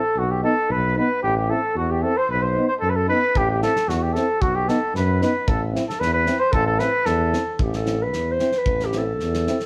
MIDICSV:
0, 0, Header, 1, 7, 480
1, 0, Start_track
1, 0, Tempo, 531444
1, 149, Time_signature, 2, 2, 24, 8
1, 8724, End_track
2, 0, Start_track
2, 0, Title_t, "Clarinet"
2, 0, Program_c, 0, 71
2, 0, Note_on_c, 0, 69, 88
2, 173, Note_on_c, 0, 66, 76
2, 187, Note_off_c, 0, 69, 0
2, 275, Note_on_c, 0, 67, 64
2, 288, Note_off_c, 0, 66, 0
2, 385, Note_off_c, 0, 67, 0
2, 390, Note_on_c, 0, 69, 74
2, 630, Note_on_c, 0, 71, 87
2, 643, Note_off_c, 0, 69, 0
2, 867, Note_off_c, 0, 71, 0
2, 872, Note_on_c, 0, 71, 93
2, 1095, Note_off_c, 0, 71, 0
2, 1113, Note_on_c, 0, 67, 76
2, 1229, Note_off_c, 0, 67, 0
2, 1245, Note_on_c, 0, 67, 69
2, 1362, Note_on_c, 0, 69, 83
2, 1376, Note_off_c, 0, 67, 0
2, 1587, Note_off_c, 0, 69, 0
2, 1593, Note_on_c, 0, 66, 82
2, 1718, Note_on_c, 0, 67, 76
2, 1732, Note_off_c, 0, 66, 0
2, 1836, Note_on_c, 0, 69, 89
2, 1850, Note_off_c, 0, 67, 0
2, 1959, Note_on_c, 0, 72, 88
2, 1973, Note_off_c, 0, 69, 0
2, 2074, Note_on_c, 0, 71, 96
2, 2087, Note_off_c, 0, 72, 0
2, 2197, Note_on_c, 0, 72, 82
2, 2211, Note_off_c, 0, 71, 0
2, 2424, Note_off_c, 0, 72, 0
2, 2430, Note_on_c, 0, 72, 85
2, 2483, Note_off_c, 0, 72, 0
2, 2562, Note_on_c, 0, 69, 80
2, 2609, Note_on_c, 0, 71, 77
2, 2622, Note_off_c, 0, 69, 0
2, 2677, Note_on_c, 0, 69, 77
2, 2691, Note_off_c, 0, 71, 0
2, 2785, Note_off_c, 0, 69, 0
2, 2790, Note_on_c, 0, 71, 96
2, 3050, Note_on_c, 0, 67, 90
2, 3063, Note_off_c, 0, 71, 0
2, 3150, Note_off_c, 0, 67, 0
2, 3156, Note_on_c, 0, 67, 71
2, 3263, Note_off_c, 0, 67, 0
2, 3277, Note_on_c, 0, 69, 72
2, 3510, Note_on_c, 0, 66, 82
2, 3523, Note_off_c, 0, 69, 0
2, 3653, Note_on_c, 0, 67, 64
2, 3667, Note_off_c, 0, 66, 0
2, 3769, Note_on_c, 0, 69, 83
2, 3783, Note_off_c, 0, 67, 0
2, 3987, Note_on_c, 0, 66, 77
2, 4000, Note_off_c, 0, 69, 0
2, 4119, Note_on_c, 0, 67, 61
2, 4133, Note_off_c, 0, 66, 0
2, 4242, Note_on_c, 0, 69, 68
2, 4256, Note_off_c, 0, 67, 0
2, 4475, Note_off_c, 0, 69, 0
2, 4491, Note_on_c, 0, 71, 71
2, 4703, Note_off_c, 0, 71, 0
2, 4713, Note_on_c, 0, 71, 81
2, 4953, Note_on_c, 0, 69, 73
2, 4967, Note_off_c, 0, 71, 0
2, 5075, Note_off_c, 0, 69, 0
2, 5307, Note_on_c, 0, 69, 79
2, 5423, Note_on_c, 0, 71, 80
2, 5437, Note_off_c, 0, 69, 0
2, 5540, Note_off_c, 0, 71, 0
2, 5545, Note_on_c, 0, 71, 80
2, 5798, Note_on_c, 0, 72, 84
2, 5812, Note_off_c, 0, 71, 0
2, 5884, Note_on_c, 0, 69, 75
2, 5897, Note_off_c, 0, 72, 0
2, 6008, Note_off_c, 0, 69, 0
2, 6013, Note_on_c, 0, 69, 77
2, 6138, Note_on_c, 0, 71, 74
2, 6151, Note_off_c, 0, 69, 0
2, 6399, Note_on_c, 0, 69, 72
2, 6413, Note_off_c, 0, 71, 0
2, 6872, Note_off_c, 0, 69, 0
2, 6887, Note_on_c, 0, 67, 72
2, 7004, Note_on_c, 0, 69, 82
2, 7017, Note_off_c, 0, 67, 0
2, 7249, Note_on_c, 0, 71, 84
2, 7263, Note_off_c, 0, 69, 0
2, 7509, Note_on_c, 0, 72, 84
2, 7522, Note_off_c, 0, 71, 0
2, 7747, Note_on_c, 0, 71, 89
2, 7761, Note_off_c, 0, 72, 0
2, 7993, Note_on_c, 0, 67, 79
2, 8006, Note_off_c, 0, 71, 0
2, 8112, Note_on_c, 0, 69, 85
2, 8126, Note_off_c, 0, 67, 0
2, 8724, Note_off_c, 0, 69, 0
2, 8724, End_track
3, 0, Start_track
3, 0, Title_t, "Cornet"
3, 0, Program_c, 1, 56
3, 0, Note_on_c, 1, 69, 86
3, 167, Note_on_c, 1, 66, 85
3, 181, Note_off_c, 1, 69, 0
3, 278, Note_on_c, 1, 67, 77
3, 292, Note_off_c, 1, 66, 0
3, 392, Note_off_c, 1, 67, 0
3, 397, Note_on_c, 1, 69, 99
3, 644, Note_on_c, 1, 71, 91
3, 657, Note_off_c, 1, 69, 0
3, 878, Note_off_c, 1, 71, 0
3, 888, Note_on_c, 1, 71, 91
3, 1104, Note_off_c, 1, 71, 0
3, 1110, Note_on_c, 1, 67, 101
3, 1228, Note_off_c, 1, 67, 0
3, 1240, Note_on_c, 1, 67, 85
3, 1354, Note_on_c, 1, 69, 104
3, 1368, Note_off_c, 1, 67, 0
3, 1593, Note_off_c, 1, 69, 0
3, 1604, Note_on_c, 1, 66, 83
3, 1728, Note_on_c, 1, 67, 72
3, 1742, Note_off_c, 1, 66, 0
3, 1827, Note_on_c, 1, 69, 92
3, 1841, Note_off_c, 1, 67, 0
3, 1964, Note_on_c, 1, 72, 93
3, 1978, Note_off_c, 1, 69, 0
3, 2079, Note_on_c, 1, 71, 103
3, 2093, Note_off_c, 1, 72, 0
3, 2186, Note_on_c, 1, 72, 79
3, 2199, Note_off_c, 1, 71, 0
3, 2419, Note_off_c, 1, 72, 0
3, 2425, Note_on_c, 1, 72, 78
3, 2479, Note_off_c, 1, 72, 0
3, 2529, Note_on_c, 1, 69, 92
3, 2617, Note_on_c, 1, 71, 62
3, 2630, Note_off_c, 1, 69, 0
3, 2670, Note_on_c, 1, 69, 80
3, 2684, Note_off_c, 1, 71, 0
3, 2784, Note_off_c, 1, 69, 0
3, 2789, Note_on_c, 1, 71, 100
3, 3043, Note_on_c, 1, 67, 94
3, 3057, Note_off_c, 1, 71, 0
3, 3158, Note_off_c, 1, 67, 0
3, 3163, Note_on_c, 1, 67, 73
3, 3267, Note_off_c, 1, 67, 0
3, 3276, Note_on_c, 1, 69, 86
3, 3511, Note_on_c, 1, 66, 71
3, 3524, Note_off_c, 1, 69, 0
3, 3630, Note_on_c, 1, 67, 73
3, 3644, Note_off_c, 1, 66, 0
3, 3731, Note_on_c, 1, 69, 80
3, 3745, Note_off_c, 1, 67, 0
3, 3989, Note_on_c, 1, 66, 87
3, 4002, Note_off_c, 1, 69, 0
3, 4112, Note_on_c, 1, 67, 76
3, 4126, Note_off_c, 1, 66, 0
3, 4232, Note_on_c, 1, 69, 81
3, 4245, Note_off_c, 1, 67, 0
3, 4470, Note_off_c, 1, 69, 0
3, 4481, Note_on_c, 1, 71, 79
3, 4698, Note_off_c, 1, 71, 0
3, 4724, Note_on_c, 1, 71, 80
3, 4951, Note_on_c, 1, 69, 83
3, 4964, Note_off_c, 1, 71, 0
3, 5074, Note_off_c, 1, 69, 0
3, 5314, Note_on_c, 1, 69, 83
3, 5417, Note_on_c, 1, 71, 102
3, 5430, Note_off_c, 1, 69, 0
3, 5536, Note_off_c, 1, 71, 0
3, 5542, Note_on_c, 1, 71, 97
3, 5777, Note_on_c, 1, 72, 107
3, 5790, Note_off_c, 1, 71, 0
3, 5900, Note_on_c, 1, 69, 111
3, 5914, Note_off_c, 1, 72, 0
3, 6016, Note_off_c, 1, 69, 0
3, 6021, Note_on_c, 1, 69, 86
3, 6135, Note_on_c, 1, 71, 100
3, 6148, Note_off_c, 1, 69, 0
3, 6376, Note_on_c, 1, 69, 84
3, 6390, Note_off_c, 1, 71, 0
3, 6861, Note_off_c, 1, 69, 0
3, 8724, End_track
4, 0, Start_track
4, 0, Title_t, "Euphonium"
4, 0, Program_c, 2, 58
4, 376, Note_on_c, 2, 63, 73
4, 475, Note_off_c, 2, 63, 0
4, 868, Note_on_c, 2, 63, 55
4, 964, Note_off_c, 2, 63, 0
4, 1340, Note_on_c, 2, 64, 78
4, 1439, Note_off_c, 2, 64, 0
4, 1826, Note_on_c, 2, 64, 63
4, 1924, Note_off_c, 2, 64, 0
4, 2310, Note_on_c, 2, 63, 66
4, 2406, Note_off_c, 2, 63, 0
4, 2779, Note_on_c, 2, 63, 48
4, 2877, Note_off_c, 2, 63, 0
4, 3265, Note_on_c, 2, 64, 65
4, 3362, Note_off_c, 2, 64, 0
4, 3753, Note_on_c, 2, 64, 56
4, 3848, Note_off_c, 2, 64, 0
4, 4225, Note_on_c, 2, 63, 63
4, 4321, Note_off_c, 2, 63, 0
4, 4702, Note_on_c, 2, 63, 61
4, 4799, Note_off_c, 2, 63, 0
4, 5183, Note_on_c, 2, 64, 74
4, 5279, Note_off_c, 2, 64, 0
4, 5649, Note_on_c, 2, 64, 65
4, 5749, Note_off_c, 2, 64, 0
4, 6130, Note_on_c, 2, 64, 57
4, 6229, Note_off_c, 2, 64, 0
4, 6610, Note_on_c, 2, 64, 47
4, 6709, Note_off_c, 2, 64, 0
4, 7092, Note_on_c, 2, 64, 61
4, 7191, Note_off_c, 2, 64, 0
4, 7586, Note_on_c, 2, 64, 55
4, 7682, Note_off_c, 2, 64, 0
4, 8070, Note_on_c, 2, 64, 56
4, 8166, Note_off_c, 2, 64, 0
4, 8559, Note_on_c, 2, 64, 72
4, 8654, Note_off_c, 2, 64, 0
4, 8724, End_track
5, 0, Start_track
5, 0, Title_t, "Euphonium"
5, 0, Program_c, 3, 58
5, 399, Note_on_c, 3, 59, 68
5, 493, Note_off_c, 3, 59, 0
5, 884, Note_on_c, 3, 59, 78
5, 977, Note_off_c, 3, 59, 0
5, 1366, Note_on_c, 3, 60, 66
5, 1459, Note_off_c, 3, 60, 0
5, 1837, Note_on_c, 3, 60, 73
5, 1932, Note_off_c, 3, 60, 0
5, 2323, Note_on_c, 3, 59, 67
5, 2417, Note_off_c, 3, 59, 0
5, 2814, Note_on_c, 3, 59, 62
5, 2905, Note_off_c, 3, 59, 0
5, 3276, Note_on_c, 3, 60, 58
5, 3371, Note_off_c, 3, 60, 0
5, 3761, Note_on_c, 3, 60, 77
5, 3855, Note_off_c, 3, 60, 0
5, 4225, Note_on_c, 3, 59, 73
5, 4322, Note_off_c, 3, 59, 0
5, 4706, Note_on_c, 3, 59, 72
5, 4802, Note_off_c, 3, 59, 0
5, 5174, Note_on_c, 3, 60, 67
5, 5272, Note_off_c, 3, 60, 0
5, 5652, Note_on_c, 3, 60, 72
5, 5751, Note_off_c, 3, 60, 0
5, 6144, Note_on_c, 3, 60, 56
5, 6240, Note_off_c, 3, 60, 0
5, 6611, Note_on_c, 3, 60, 58
5, 6710, Note_off_c, 3, 60, 0
5, 7088, Note_on_c, 3, 60, 48
5, 7188, Note_off_c, 3, 60, 0
5, 7579, Note_on_c, 3, 60, 64
5, 7676, Note_off_c, 3, 60, 0
5, 8069, Note_on_c, 3, 60, 56
5, 8165, Note_off_c, 3, 60, 0
5, 8557, Note_on_c, 3, 60, 70
5, 8652, Note_off_c, 3, 60, 0
5, 8724, End_track
6, 0, Start_track
6, 0, Title_t, "Tuba"
6, 0, Program_c, 4, 58
6, 143, Note_on_c, 4, 35, 93
6, 409, Note_off_c, 4, 35, 0
6, 631, Note_on_c, 4, 35, 106
6, 895, Note_off_c, 4, 35, 0
6, 1110, Note_on_c, 4, 33, 100
6, 1375, Note_off_c, 4, 33, 0
6, 1582, Note_on_c, 4, 40, 96
6, 1849, Note_off_c, 4, 40, 0
6, 2068, Note_on_c, 4, 35, 99
6, 2333, Note_off_c, 4, 35, 0
6, 2547, Note_on_c, 4, 42, 82
6, 2812, Note_off_c, 4, 42, 0
6, 3032, Note_on_c, 4, 33, 98
6, 3295, Note_off_c, 4, 33, 0
6, 3506, Note_on_c, 4, 40, 98
6, 3770, Note_off_c, 4, 40, 0
6, 3987, Note_on_c, 4, 35, 85
6, 4251, Note_off_c, 4, 35, 0
6, 4462, Note_on_c, 4, 42, 104
6, 4727, Note_off_c, 4, 42, 0
6, 4940, Note_on_c, 4, 33, 95
6, 5205, Note_off_c, 4, 33, 0
6, 5419, Note_on_c, 4, 40, 105
6, 5685, Note_off_c, 4, 40, 0
6, 5902, Note_on_c, 4, 33, 109
6, 6166, Note_off_c, 4, 33, 0
6, 6378, Note_on_c, 4, 40, 111
6, 6644, Note_off_c, 4, 40, 0
6, 6863, Note_on_c, 4, 33, 97
6, 7349, Note_on_c, 4, 40, 86
6, 7362, Note_off_c, 4, 33, 0
6, 7612, Note_off_c, 4, 40, 0
6, 7829, Note_on_c, 4, 33, 91
6, 8312, Note_on_c, 4, 40, 105
6, 8326, Note_off_c, 4, 33, 0
6, 8576, Note_off_c, 4, 40, 0
6, 8724, End_track
7, 0, Start_track
7, 0, Title_t, "Drums"
7, 3029, Note_on_c, 9, 36, 75
7, 3120, Note_off_c, 9, 36, 0
7, 3273, Note_on_c, 9, 38, 29
7, 3364, Note_off_c, 9, 38, 0
7, 3397, Note_on_c, 9, 38, 29
7, 3487, Note_off_c, 9, 38, 0
7, 3518, Note_on_c, 9, 38, 26
7, 3608, Note_off_c, 9, 38, 0
7, 3754, Note_on_c, 9, 38, 21
7, 3844, Note_off_c, 9, 38, 0
7, 3989, Note_on_c, 9, 36, 69
7, 4079, Note_off_c, 9, 36, 0
7, 4234, Note_on_c, 9, 38, 31
7, 4324, Note_off_c, 9, 38, 0
7, 4475, Note_on_c, 9, 38, 28
7, 4565, Note_off_c, 9, 38, 0
7, 4713, Note_on_c, 9, 38, 28
7, 4803, Note_off_c, 9, 38, 0
7, 4947, Note_on_c, 9, 36, 84
7, 5038, Note_off_c, 9, 36, 0
7, 5200, Note_on_c, 9, 38, 29
7, 5291, Note_off_c, 9, 38, 0
7, 5327, Note_on_c, 9, 38, 27
7, 5418, Note_off_c, 9, 38, 0
7, 5438, Note_on_c, 9, 38, 30
7, 5528, Note_off_c, 9, 38, 0
7, 5658, Note_on_c, 9, 38, 28
7, 5748, Note_off_c, 9, 38, 0
7, 5896, Note_on_c, 9, 36, 85
7, 5987, Note_off_c, 9, 36, 0
7, 6136, Note_on_c, 9, 38, 34
7, 6226, Note_off_c, 9, 38, 0
7, 6372, Note_on_c, 9, 38, 31
7, 6463, Note_off_c, 9, 38, 0
7, 6623, Note_on_c, 9, 38, 30
7, 6713, Note_off_c, 9, 38, 0
7, 6858, Note_on_c, 9, 36, 81
7, 6948, Note_off_c, 9, 36, 0
7, 6983, Note_on_c, 9, 38, 22
7, 7074, Note_off_c, 9, 38, 0
7, 7098, Note_on_c, 9, 38, 31
7, 7189, Note_off_c, 9, 38, 0
7, 7343, Note_on_c, 9, 38, 29
7, 7434, Note_off_c, 9, 38, 0
7, 7581, Note_on_c, 9, 38, 26
7, 7671, Note_off_c, 9, 38, 0
7, 7695, Note_on_c, 9, 38, 19
7, 7785, Note_off_c, 9, 38, 0
7, 7820, Note_on_c, 9, 36, 77
7, 7911, Note_off_c, 9, 36, 0
7, 7947, Note_on_c, 9, 38, 21
7, 8037, Note_off_c, 9, 38, 0
7, 8060, Note_on_c, 9, 38, 25
7, 8150, Note_off_c, 9, 38, 0
7, 8309, Note_on_c, 9, 38, 24
7, 8399, Note_off_c, 9, 38, 0
7, 8437, Note_on_c, 9, 38, 27
7, 8527, Note_off_c, 9, 38, 0
7, 8555, Note_on_c, 9, 38, 28
7, 8645, Note_off_c, 9, 38, 0
7, 8669, Note_on_c, 9, 38, 19
7, 8724, Note_off_c, 9, 38, 0
7, 8724, End_track
0, 0, End_of_file